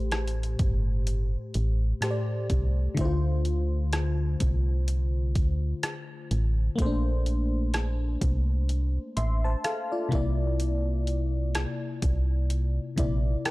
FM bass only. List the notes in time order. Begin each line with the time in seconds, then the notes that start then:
Already playing: A1
0.60 G1
1.55 A1
2.50 C2
2.98 D2
4.41 C2
5.36 D2
6.31 A1
6.79 A#1
8.22 C2
9.17 A1
10.12 C2
12.03 C2
12.98 A#1